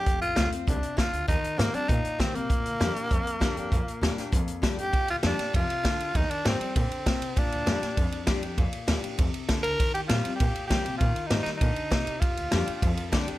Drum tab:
RD |--------|--------|--------|--------|
HH |xxxxxxxx|xxxxxxxx|xxxxxxxx|xxxxxxxx|
SD |--o---o-|--o---o-|--o---o-|--oo--o-|
BD |o---o-o-|o---o-o-|o---o-o-|o---o-o-|

RD |xxxxxxxx|xxxxxxxx|xxxxxxxx|xxxxxxxx|
HH |--------|--------|--------|--------|
SD |--oo--o-|--o---o-|--oo--o-|--o---o-|
BD |o---o-o-|o---o-o-|o---o-o-|o---o-o-|

RD |xxxxxxxx|xxxxxxxx|xxxxxxxx|
HH |--------|--------|--------|
SD |--o---o-|--oo--o-|--o---o-|
BD |o---o-o-|o---o-o-|o---o-o-|